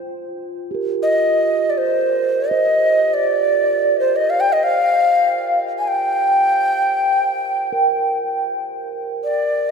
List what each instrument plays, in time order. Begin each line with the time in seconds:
Already playing: singing bowl F4
0.71 singing bowl G4 A#4
1.03 native american-style wooden flute D#5
1.70 native american-style wooden flute D5
1.78 native american-style wooden flute C5
2.49 singing bowl C5, native american-style wooden flute D#5
3.14 native american-style wooden flute D5
4.00 native american-style wooden flute C5
4.16 native american-style wooden flute D#5
4.30 native american-style wooden flute F5
4.40 native american-style wooden flute G5
4.53 native american-style wooden flute D#5
4.63 native american-style wooden flute F5
5.79 native american-style wooden flute G#5
5.88 native american-style wooden flute G5
7.73 singing bowl A#4
9.24 native american-style wooden flute D5